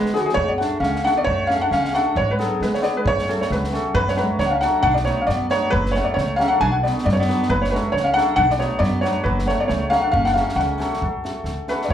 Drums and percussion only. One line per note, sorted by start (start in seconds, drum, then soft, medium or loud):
0.06 snare soft
0.15 snare soft
0.29 snare soft
0.37 kick medium
0.61 snare soft
0.83 snare soft
0.96 snare soft
1.06 snare soft
1.27 kick medium
1.50 snare soft
1.72 snare soft
1.85 snare soft
1.94 snare soft
2.16 kick medium
2.40 snare soft
2.62 snare soft
2.74 snare soft
2.83 snare soft
3.06 kick medium
3.19 snare soft
3.29 snare soft
3.42 snare soft
3.51 snare soft
3.64 snare soft
3.74 snare soft
3.95 kick medium
4.08 snare soft
4.17 snare soft
4.40 snare soft
4.62 snare soft
4.84 kick medium
4.96 snare soft
5.06 snare soft
5.29 snare soft
5.51 snare soft
5.73 kick loud
5.86 snare soft
5.95 snare soft
6.18 snare soft
6.40 snare soft
6.62 kick medium
6.86 snare soft
6.98 snare soft
7.09 snare soft
7.21 snare soft
7.30 snare soft
7.43 snare soft
7.50 kick medium
7.64 snare soft
7.75 snare soft
7.97 snare soft
8.18 snare soft
8.38 kick medium
8.50 snare soft
8.61 snare soft
8.83 snare soft
9.05 snare soft
9.26 kick medium
9.39 snare soft
9.49 snare soft
9.69 snare soft
9.92 snare soft
10.14 kick medium
10.26 snare soft
10.36 snare soft
10.49 snare soft
10.59 snare soft
10.80 snare soft
10.93 snare soft
11.02 kick medium
11.25 snare soft
11.45 snare soft
11.68 snare soft
11.81 snare soft
11.90 kick medium